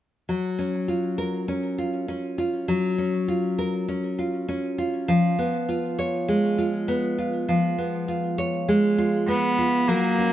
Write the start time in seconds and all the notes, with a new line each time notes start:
0.29 F#3
0.59 C#4
0.88 F4
1.18 A#4
1.48 C#4
1.78 F4
2.08 C#4
2.38 F4
2.68 F#3
2.98 C#4
3.28 F4
3.58 A#4
3.88 C#4
4.19 F4
4.49 C#4
4.78 F4
5.08 F3
5.39 B3
5.69 F4
5.99 C#5
6.28 G#3
6.58 F4
6.88 B3
7.18 F4
7.49 F3
7.78 B3
8.08 F4
8.38 C#5
8.68 G#3
8.98 F4
9.28 B3
9.59 F4
9.88 F#3 A#3 A#4
10.18 C#4